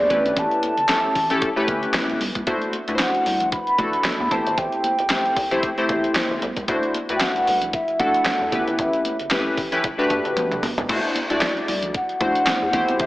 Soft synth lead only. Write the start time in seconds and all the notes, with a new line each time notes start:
Already playing: D5
0.38 A5
3.01 F#5
3.53 B5
4.31 A5
4.58 G5
7.16 G5
7.21 F#5
7.74 E5
8.00 F#5
8.67 E5
11.95 F#5
13.00 E5